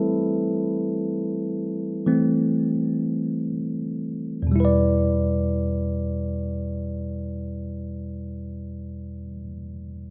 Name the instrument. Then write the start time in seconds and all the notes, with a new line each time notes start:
tine electric piano
Already playing: G3 C4 E4 A4
2.06 E3 A3 C4
4.42 E2
4.47 B2
4.51 G3
4.56 E4
4.60 B4
4.65 D5